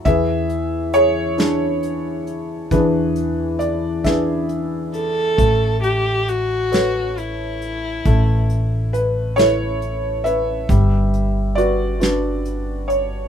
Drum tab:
HH |xxxxxx|xxxxxx|xxxxxx|xxxxxx|
SD |---o--|---o--|---o--|---o--|
BD |o-----|o--o--|o-----|o-----|

HH |xxxxxx|
SD |---o--|
BD |o-----|